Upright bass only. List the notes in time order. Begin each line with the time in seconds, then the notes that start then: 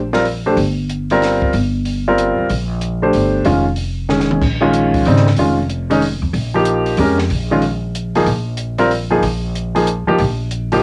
Already playing: A#1
0.56 G1
1.54 G1
2.38 muted upright bass stroke
2.50 A#1
3.14 G1
3.46 F1
4.41 A#1
5.06 G#1
5.38 F1
6.22 F2
6.33 A#1
6.98 F2
7.30 A#1
8.26 A#1
9.23 A#1
10.09 muted upright bass stroke
10.20 A#1